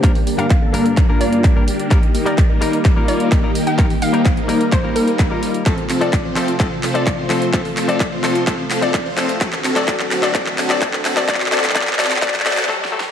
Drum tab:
HH |x-----o-----o-----x-----x-----------o-----x-----x-----------o-----x-----x-----------o-----x-----|x-----x-----o-----x-----x-----------o-----x-----x-----------o-----x-----x-----------o-----x-----|x-----o-----o-----x-----x-----x-----o-----x-----x-----------o-----x-----x-----------o-----x-----|x-----x-----o-----x-----x-----------o-----x-----x-----------o-----x-----x-----------o-----x-----|
CP |x-----------------------x-----------------------x-----------------------x-----------------------|x-----------------------x-----------------------x-----------------------x-----------------------|x-----------------------x-----------------------x-----------------------x-----------------------|x-----------x-----------x-----------x-----------x-----------x-----------x-----------x-----------|
SD |------------------------------------------------------------------------------------------------|------------------------------------------------------------------------------------------------|------------------------------------------------------------------------------------------------|------------------------------------------------------------------------------------------------|
BD |o-----------------------o-----------------------o-----------------------o-----------------------|o-----------------------o-----------------------o-----------------------o-----------------------|o-----------------------o-----------------------o-----------------------o-----------------------|o-----------------------o-----------------------o-----------------------o-----------------------|

HH |x-----o-----o-----x-----x-----------o-----x-----x-----------o-----x-----x-----------o-----x-----|x-----x-----o-----x-----x-----------o-----x-----x-----------o-----x-----x-----------o-----x-----|x-----o-----o-----x-----x-----x-----o-----x-----x-----x-----o-----x-----------------------------|
CP |x-----------x-----------x-----------x-----------x-----------x-----------x-----------x-----------|x-----x-----x-----x-----x-----x-----x-----x-----x-----x-----x-----x-----x-----x-----x-----x-----|x--x--x--x--x--x--x--x--x--x--x--x--x--x--x--x--x--x--x--x--x--x--x--x--------------------------|
SD |------------------------------------------------------------------------------------------------|------------------------------------------------------------------------------------------------|------------------------------------------------------------------------o-------o-------o-------|
BD |o-----------------------o-----------------------o-----------------------o-----------------------|o-----------------------o-----------------------o-----------------------o-----------------------|o-----------------------o-----------------------o-----------------------------------------------|